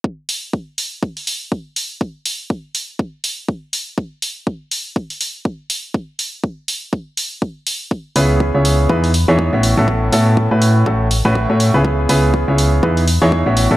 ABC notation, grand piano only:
X:1
M:4/4
L:1/16
Q:"Swing 16ths" 1/4=122
K:C#m
V:1 name="Grand piano"
z16 | z16 | z16 | z16 |
z2 [C,B,CEGB]3 [C,B,CEGc]3 [E,B,DEGB]2 z [E,B,DEGc]2 [A,,B,CEFc]2 [A,,B,CEFA]- | [A,,B,CEFA]2 [A,,B,CEFA]3 [A,,A,CEFB]3 [A,,A,CEFA]2 z [A,,A,CEFB]2 [A,,A,CEFc]2 [C,B,CEGB]- | [C,B,CEGB]2 [C,B,CEGB]3 [C,B,CEGc]3 [E,B,DEGB]2 z [E,B,DEGc]2 [A,,B,CEFc]2 [A,,B,CEFA] |]